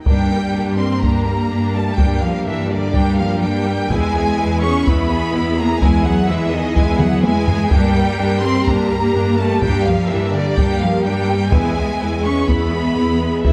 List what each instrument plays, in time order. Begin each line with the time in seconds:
0.05 double bass section G2, cello section G3, viola section A#3 D4, french horn section A#3 D4, violin section G4 A#4 G5, taiko
0.31 viola section G3 A#3, violin section G4 A#4
0.54 double bass section G2, viola section A#3 D4, violin section G4 A#4
0.78 viola section G3 A#3, cello section C4, violin section C6
0.82 violin section G4 A#4
1.02 double bass section G2, cello section A#3, viola section A#3 D4, violin section G4 A#4 A#5, taiko
1.27 viola section G3 A#3, violin section G4 A#4
1.51 double bass section G2, viola section A#3 D4, violin section G4 A#4
1.75 viola section G3 A#3, cello section A3, violin section G4 A#4 A5
1.97 double bass section G2, cello section G3, viola section A#3 D4, violin section G4 A#4 G5, taiko
2.21 cello section F3, viola section G3 A#3, violin section G4 A#4 F5
2.47 double bass section G2, cello section E3, viola section A#3 D4, violin section G4 A#4 E5
2.70 cello section D3, viola section G3 A#3, violin section G4 A#4 D5
2.93 double bass section G2, cello section G3, viola section A#3 D4, violin section G4 A#4 G5, taiko
3.18 cello section F3, viola section G3 A#3, violin section G4 A#4 F5
3.42 double bass section G2, cello section G3, viola section A#3 D4, violin section G4 A#4 G5
3.68 viola section G3 A#3, violin section G4 A#4
3.90 double bass section E2, cello section G#3, viola section G#3 E4, french horn section B3 E4, violin section B4 G#5, taiko
4.15 viola section B3 G#4, violin section G#4 E5
4.39 double bass section E2, viola section G#3 E4, violin section B4
4.62 viola section B3 G#4, cello section C#4, violin section G#4 E5 C#6
4.86 double bass section E2, viola section G#3 E4, cello section B3, violin section B4 B5, taiko
5.10 viola section B3 G#4, violin section G#4 E5
5.33 double bass section E2, viola section G#3 E4, violin section B4
5.56 cello section A#3, viola section B3 G#4, violin section G#4 E5 A#5
5.81 double bass section E2, cello section G#3, viola section G#3 E4, violin section B4 G#5, taiko
6.04 cello section F#3, viola section B3 G#4, violin section G#4 E5 F#5
6.28 double bass section E2, cello section E3, viola section G#3 E4, violin section B4 E5
6.51 cello section D#3, viola section B3 G#4, violin section G#4 D#5 E5
6.75 double bass section E2, viola section G#3 E4, cello section G#3, violin section B4 G#5, taiko
7.00 cello section F#3, viola section B3 G#4, violin section G#4 E5 F#5, taiko mid
7.23 double bass section E2, viola section G#3 E4, cello section G#3, violin section B4 G#5, taiko high
7.48 viola section B3 G#4, violin section G#4 E5, taiko low
7.71 double bass section G2, cello section G3, viola section A#3 D4, french horn section A#3 G4, violin section G4 A#4 G5, taiko
7.95 viola section G3 A#3, violin section G4 A#4
8.18 double bass section G2, viola section A#3 D4, violin section G4 A#4
8.42 viola section G3 A#3, cello section C4, violin section G4 A#4 C6
8.65 double bass section G2, viola section A#3 D4, cello section A#3, violin section G4 A#4 A#5, taiko
8.91 viola section G3 A#3, violin section G4 A#4
9.14 double bass section G2, viola section A#3 D4, violin section G4 A#4
9.39 viola section G3 A#3, cello section A3, violin section G4 A#4 A5
9.62 double bass section G2, cello section G3, viola section A#3 D4, violin section G4 A#4 G5, taiko
9.85 cello section F3, viola section G3 A#3, violin section G4 A#4 F5
10.09 double bass section G2, cello section E3, viola section A#3 D4, violin section G4 A#4 E5
10.33 cello section D3, viola section G3 A#3, violin section G4 A#4 D5
10.58 double bass section G2, cello section G3, viola section A#3 D4, violin section G4 A#4 G5, taiko
10.81 cello section F3, viola section G3 A#3, violin section G4 A#4 F5
11.03 double bass section G2, cello section G3, viola section A#3 D4, violin section G4 G5
11.08 violin section A#4
11.29 viola section G3 A#3, violin section G4 A#4
11.51 double bass section E2, cello section G#3, viola section B3 E4, french horn section B3 G#4, violin section B4 G#5, taiko
11.77 viola section G#3 B3, violin section G#4 E5
12.00 double bass section E2, viola section B3 E4, violin section B4
12.24 viola section G#3 B3, cello section C#4, violin section G#4 E5 C#6
12.47 double bass section E2, cello section B3, viola section B3 E4, violin section B5, taiko
12.52 violin section B4
12.73 viola section G#3 B3, violin section G#4 E5
12.97 double bass section E2, viola section B3 E4, violin section B4
13.20 viola section G#3 B3, violin section G#4 E5
13.44 double bass section E2, cello section E3, viola section B3 E4, violin section B4 E5, taiko